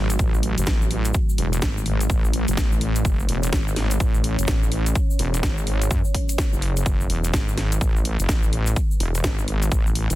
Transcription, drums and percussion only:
0.10 closed hi-hat medium
0.10 shaker medium
0.19 kick loud
0.19 closed hi-hat medium
0.19 shaker medium
0.34 shaker soft
0.43 open hi-hat loud
0.58 closed hi-hat medium
0.58 shaker medium
0.66 kick loud
0.66 snare loud
0.66 closed hi-hat medium
0.66 shaker medium
0.82 shaker soft
0.91 open hi-hat loud
1.05 closed hi-hat medium
1.05 shaker medium
1.14 kick loud
1.14 closed hi-hat medium
1.14 shaker medium
1.29 shaker soft
1.38 open hi-hat loud
1.53 closed hi-hat medium
1.53 shaker medium
1.62 kick loud
1.62 snare loud
1.62 closed hi-hat medium
1.62 shaker medium
1.78 shaker soft
1.86 open hi-hat loud
2.01 closed hi-hat medium
2.01 shaker medium
2.10 kick loud
2.10 closed hi-hat medium
2.10 shaker medium
2.25 shaker soft
2.33 open hi-hat loud
2.48 closed hi-hat medium
2.48 shaker medium
2.57 kick loud
2.57 snare loud
2.57 closed hi-hat medium
2.57 shaker medium
2.72 shaker soft
2.81 open hi-hat loud
2.96 closed hi-hat medium
2.96 shaker medium
3.05 kick loud
3.05 closed hi-hat medium
3.05 shaker medium
3.19 shaker soft
3.29 open hi-hat loud
3.43 closed hi-hat medium
3.43 shaker medium
3.53 kick loud
3.53 snare loud
3.53 closed hi-hat medium
3.53 shaker medium
3.68 shaker soft
3.76 snare medium
3.76 open hi-hat loud
3.91 closed hi-hat medium
3.91 shaker medium
4.00 kick loud
4.00 closed hi-hat medium
4.00 shaker medium
4.14 shaker soft
4.24 open hi-hat loud
4.39 closed hi-hat medium
4.39 shaker medium
4.47 kick loud
4.47 snare loud
4.47 closed hi-hat medium
4.47 shaker medium
4.63 shaker soft
4.72 open hi-hat loud
4.86 closed hi-hat medium
4.86 shaker medium
4.95 kick loud
4.95 closed hi-hat medium
4.95 shaker medium
5.11 shaker soft
5.19 open hi-hat loud
5.34 closed hi-hat medium
5.34 shaker medium
5.43 kick loud
5.43 snare loud
5.43 closed hi-hat soft
5.43 shaker medium
5.58 shaker soft
5.67 open hi-hat medium
5.82 closed hi-hat medium
5.82 shaker medium
5.91 kick loud
5.91 closed hi-hat medium
5.91 shaker medium
6.05 shaker soft
6.15 kick medium
6.15 open hi-hat loud
6.29 closed hi-hat medium
6.29 shaker medium
6.38 kick loud
6.38 snare loud
6.38 closed hi-hat soft
6.38 shaker medium
6.53 shaker soft
6.62 open hi-hat loud
6.77 closed hi-hat medium
6.77 shaker medium
6.86 kick loud
6.86 closed hi-hat soft
6.86 shaker medium
7.01 shaker soft
7.10 open hi-hat loud
7.24 closed hi-hat medium
7.24 shaker medium
7.33 kick loud
7.33 snare loud
7.33 closed hi-hat medium
7.33 shaker medium
7.48 shaker soft
7.58 snare medium
7.58 open hi-hat loud
7.72 closed hi-hat medium
7.72 shaker medium
7.81 kick loud
7.81 closed hi-hat medium
7.81 shaker medium
7.96 shaker soft
8.05 open hi-hat loud
8.20 closed hi-hat medium
8.20 shaker medium
8.29 kick loud
8.29 snare loud
8.29 closed hi-hat soft
8.29 shaker medium
8.43 shaker soft
8.53 open hi-hat loud
8.66 closed hi-hat medium
8.66 shaker medium
8.76 kick loud
8.76 closed hi-hat medium
8.76 shaker medium
8.91 shaker soft
9.00 open hi-hat loud
9.15 closed hi-hat medium
9.15 shaker medium
9.24 kick loud
9.24 snare loud
9.24 closed hi-hat medium
9.24 shaker medium
9.39 shaker soft
9.48 open hi-hat medium
9.63 closed hi-hat medium
9.63 shaker medium
9.72 kick loud
9.72 closed hi-hat medium
9.72 shaker medium
9.87 shaker soft
9.95 open hi-hat loud
10.10 closed hi-hat medium
10.10 shaker medium

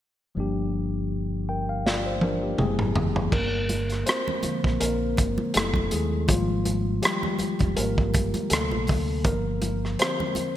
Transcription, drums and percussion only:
1.87 snare soft
2.21 high tom medium
2.58 mid tom medium
2.79 mid tom medium
2.96 floor tom medium
3.16 floor tom medium
3.32 kick loud
3.32 crash medium
3.32 low conga soft
3.69 closed hi-hat medium
3.69 muted conga soft
3.69 high conga medium
3.90 cross-stick soft
3.90 closed hi-hat soft
4.07 cross-stick loud
4.07 closed hi-hat medium
4.07 muted conga soft
4.28 high conga medium
4.28 low conga medium
4.43 closed hi-hat medium
4.43 high conga medium
4.64 kick medium
4.64 cross-stick soft
4.81 closed hi-hat medium
4.81 muted conga soft
5.17 kick medium
5.17 closed hi-hat medium
5.17 muted conga soft
5.17 high conga soft
5.38 high conga medium
5.54 cross-stick loud
5.54 closed hi-hat medium
5.74 kick medium
5.74 high conga medium
5.91 closed hi-hat medium
5.91 muted conga soft
6.28 kick loud
6.28 closed hi-hat medium
6.28 muted conga soft
6.28 low conga soft
6.65 closed hi-hat medium
6.65 high conga soft
7.03 cross-stick loud
7.03 closed hi-hat medium
7.03 muted conga soft
7.23 high conga medium
7.23 low conga medium
7.39 closed hi-hat medium
7.39 high conga medium
7.59 kick medium
7.59 closed hi-hat soft
7.77 closed hi-hat medium
7.98 kick medium
8.14 kick medium
8.14 closed hi-hat medium
8.14 muted conga soft
8.14 high conga soft
8.34 closed hi-hat soft
8.34 high conga medium
8.50 cross-stick medium
8.50 closed hi-hat medium
8.50 muted conga soft
8.71 high conga medium
8.87 kick medium
8.87 open hi-hat soft
8.87 muted conga soft
9.24 kick loud
9.24 closed hi-hat medium
9.24 low conga soft
9.62 closed hi-hat medium
9.62 muted conga soft
9.62 high conga medium
9.85 cross-stick soft
9.99 cross-stick loud
9.99 closed hi-hat medium
10.20 high conga medium
10.20 low conga medium
10.35 closed hi-hat medium
10.35 high conga medium

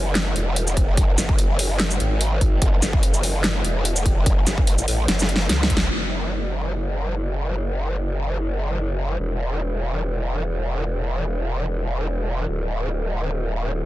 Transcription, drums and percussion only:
0.15 snare loud
0.15 clap medium
0.15 closed hi-hat medium
0.36 closed hi-hat soft
0.56 closed hi-hat medium
0.67 shaker medium
0.77 kick medium
0.77 closed hi-hat medium
0.97 kick loud
0.97 closed hi-hat medium
1.18 snare medium
1.18 closed hi-hat medium
1.18 shaker medium
1.29 kick loud
1.39 closed hi-hat medium
1.59 open hi-hat loud
1.80 snare loud
1.80 clap medium
1.80 closed hi-hat medium
1.91 shaker medium
2.00 closed hi-hat medium
2.21 closed hi-hat medium
2.41 kick medium
2.41 closed hi-hat medium
2.62 kick loud
2.62 closed hi-hat medium
2.82 snare medium
2.82 closed hi-hat medium
2.82 shaker medium
2.93 kick loud
3.03 closed hi-hat medium
3.14 shaker medium
3.23 open hi-hat loud
3.44 snare loud
3.44 clap medium
3.44 closed hi-hat medium
3.65 closed hi-hat medium
3.85 closed hi-hat medium
3.96 shaker medium
4.06 kick medium
4.06 closed hi-hat medium
4.26 kick loud
4.26 closed hi-hat medium
4.47 snare medium
4.47 closed hi-hat medium
4.47 shaker medium
4.58 kick loud
4.67 closed hi-hat medium
4.78 shaker medium
4.88 open hi-hat loud
5.08 snare medium
5.08 closed hi-hat medium
5.19 snare medium
5.19 shaker medium
5.29 closed hi-hat medium
5.36 snare medium
5.49 snare medium
5.49 closed hi-hat medium
5.63 snare loud
5.70 kick medium
5.70 closed hi-hat medium
5.77 snare loud

